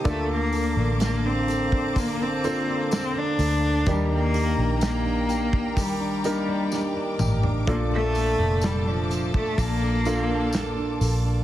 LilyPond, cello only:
\new Staff \with { instrumentName = "Cello" } { \time 4/4 \key bes \major \tempo 4 = 63 a16 bes8. bes16 c'8. bes16 c'8. c'16 d'8. | g16 bes8. bes4 g4. r8 | bes16 a8. g16 f8 a16 bes4. r8 | }